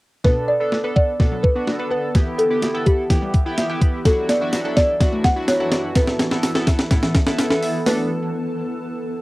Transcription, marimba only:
0.24 B4
0.48 D5
0.96 D5
1.43 B4
1.91 B4
2.38 A4
2.86 G4
4.05 A4
4.29 D5
4.77 D5
5.24 F#5
5.48 C#5
5.96 B4
7.86 B4

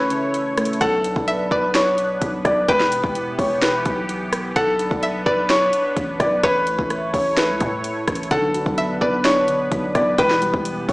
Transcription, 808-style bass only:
0.81 B1
1.16 B1
1.51 B1
2.22 B1
2.45 B1
2.68 E1
3.04 E1
3.39 E1
3.86 B1
4.56 B1
4.91 B1
5.26 B1
5.97 A1
6.20 B1
6.43 A1
6.79 A1
7.14 A1
7.49 C#2
7.61 A2
8.08 A1
8.31 B1
8.66 B1
9.01 B1
9.72 B1
9.95 B1
10.18 E1
10.54 E1
10.89 E1

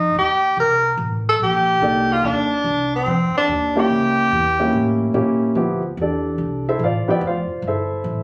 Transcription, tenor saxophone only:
Already playing: D#4
0.19 G4
0.60 A#4
1.29 A4
1.43 G4
2.12 F4
2.26 D4
2.96 C4
3.37 D4
3.80 G4

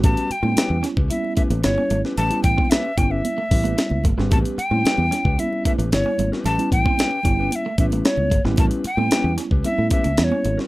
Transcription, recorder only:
0.04 A5
0.32 G5
1.11 E5
1.36 E5
1.63 C#5
2.18 A5
2.43 G5
2.65 G5
2.70 E5
2.97 G5
3.11 E5
4.32 A5
4.58 G5
5.39 E5
5.66 E5
5.94 C#5
6.46 A5
6.73 G5
7.52 E5 G5
7.80 E5
8.05 C#5
8.59 A5
8.87 G5
9.66 E5
9.92 E5
10.19 E5
10.24 C#5

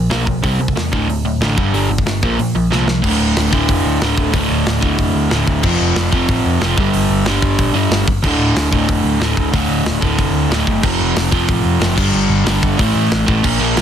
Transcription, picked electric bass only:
0.12 B1
0.44 C2
0.60 C2
0.76 E2
0.93 D1
1.08 D1
1.25 D1
1.40 A1
1.58 G1
1.73 G1
1.89 G1
2.06 G1
2.23 A#1
2.39 A#2
2.55 A#1
2.72 C2
3.04 D1
3.20 D1
3.36 D1
3.53 D1
3.69 F1
3.85 D2
4.02 D1
4.18 D1
4.34 D1
4.51 D1
4.67 D1
4.83 D1
4.99 F1
5.15 D2
5.31 D1
5.48 D1
5.64 F1
5.81 F1
5.96 F1
6.12 F1
6.29 A1
6.46 F2
6.62 F1
6.77 G1
6.94 G1
7.10 G1
7.26 G1
7.42 G1
7.59 A#1
7.74 G2
7.91 G1
8.08 G1
8.24 D1
8.39 D1
8.56 D1
8.72 D1
8.89 F1
9.04 D2
9.21 D1
9.37 D1
9.54 D1
9.69 D1
9.85 D1
10.02 D1
10.19 F1
10.34 D2
10.50 D1
10.67 G1
10.84 F1
11.00 F1
11.16 F1
11.32 F1
11.49 A1
11.65 F2
11.80 F#1
11.98 G1
12.14 G1
12.29 G1
12.46 G1
12.63 G1
12.79 A1
12.95 A2
13.11 A1
13.28 A1
13.44 A#1
13.60 A#1
13.77 A#1

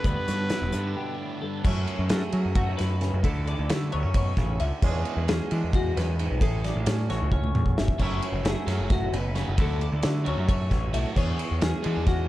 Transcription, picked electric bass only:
0.04 D2
0.29 G2
0.62 E1
0.74 G2
1.65 F#2
1.99 F#2
2.11 F#2
2.33 F#3
2.45 F#2
2.80 F#2
3.14 F#2
3.23 D2
3.59 D2
3.70 D3
3.94 D2
4.04 F#2
4.37 A1
4.61 C#2
4.82 E2
5.17 E2
5.30 E2
5.52 E3
5.64 E2
5.97 E2
6.31 B1
6.41 A1
6.76 A1
6.87 A2
7.10 A1
7.22 C#2
7.55 E2
7.79 G1
7.99 F#1
8.32 F#1
8.43 F#1
8.67 F#2
8.79 F#1
9.13 F#1
9.48 F#1
9.58 D2
9.93 D2
10.05 D3
10.27 D2
10.38 F#2
10.71 A1
10.94 B1
11.16 E2
11.51 E2
11.62 E2
11.86 E3
11.97 E2

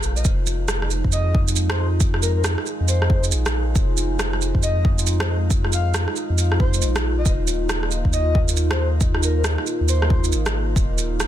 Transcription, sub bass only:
0.03 A#1
0.25 F1
1.04 F2
2.80 F2
3.32 A#1
3.76 F1
4.55 F2
6.29 F2
6.82 A#1
7.26 D#1
8.05 D#2
9.80 D#2
10.32 G#1
10.76 D#1

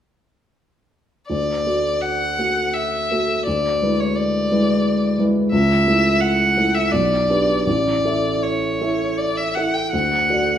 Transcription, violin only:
1.29 D5
2.01 F#5
2.74 E5
3.46 D5
4.00 C#5
4.15 D5
5.53 E5
6.20 F#5
6.74 E5
6.92 D5
7.65 D5
8.42 C#5
9.17 D5
9.37 E5
9.55 F#5
9.74 G5
9.92 F#5

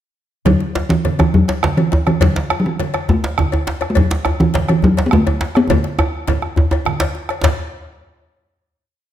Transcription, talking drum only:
0.46 F#3
0.89 E3
1.19 E3
1.34 F#3
1.77 E3
2.07 E3
2.21 F#3
2.60 F#3
2.66 E3
3.10 A3
3.90 A3
3.97 F#3
4.40 E3
4.69 E3
4.84 F#3
5.06 B3
5.13 A3
5.57 B3
5.71 A3

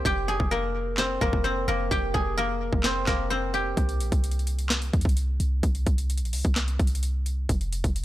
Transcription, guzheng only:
Already playing: A#3 C4 A#4 C5
0.05 G4 G5
0.28 G#4 G#5
0.51 A#3 A#4
0.98 C4 C5
1.21 A#3 A#4
1.44 C4 C5
1.68 A#3 A#4
1.91 G4 G5
2.14 G#4 G#5
2.38 A#3 A#4
2.85 C4 C5
3.07 A#3 A#4
3.30 C4 C5
3.54 G4 G5

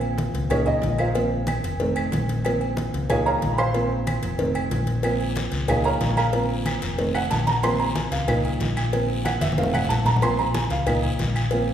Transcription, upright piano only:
Already playing: F3 A#3 C4
0.50 F3 A#3 C#4 D#4 G#4 A#4 C#5
0.67 D#4 D#5
0.99 F4 A#4 C5 F5
1.14 F3 A#3 C4
1.80 D#3 A3 C4
2.44 F3 A#3 C4
3.09 F3 A#3 D#4 G#4 C#5 F5 G#5
3.26 A#4 C#5 F5 A#5
3.54 B5
3.58 C5 F5 C6
3.74 F3 A#3 C4
4.39 D#3 A3 C4
5.03 F3 A#3 C4
5.68 F3 A#3 D#4 G#4 C#5 F5 G#5
5.85 A#4 C#5 F5 A#5
6.17 A#4 F5 A#5
6.33 F3 A#3 C4
6.98 D#3 A3 C4
7.15 F#5
7.31 A5
7.47 A#5
7.63 F3 A#3 C4 C6
7.80 A#5
7.95 G#5
8.12 F5
8.27 F3 A#3 D#4
8.92 F3 A#3 C4
9.25 F#5
9.41 E5
9.57 D#3 A3 C4 F5
9.74 F#5
9.89 A5
10.06 A#5
10.22 F3 A#3 C4 C6
10.39 A#5
10.55 G#5
10.71 F5
10.86 F3 A#3 D#4
11.52 F3 A#3 C4

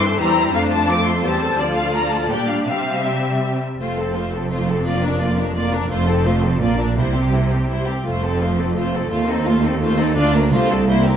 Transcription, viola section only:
Already playing: E3 C4
0.20 G3 E4
0.37 G3
0.56 A3 D4
0.90 A3 C4
1.25 G3 C4
1.60 F3 F4
1.95 F3
2.31 G3 D4
2.68 G3 C4
3.80 A3
3.99 C4
4.17 A3
4.35 C4
4.52 A3
4.69 C4
4.87 A#3
5.04 D4
5.21 A#3
5.40 D4
5.56 A#3
5.73 D4
5.92 A3
6.09 C4
6.27 A3
6.44 C4
6.62 A#3
6.80 D4
6.98 G3
7.16 C4
7.33 G3
7.52 C4
7.70 G3
7.88 C4
8.07 A3
8.24 C4
8.42 A3
8.60 C4
8.77 A3
8.94 C4
9.12 A3
9.29 C4
9.46 A3
9.63 C4
9.81 A3
9.98 C4
10.17 D4
10.34 A#3
10.52 A3
10.70 C4
10.88 A#3
11.06 C4

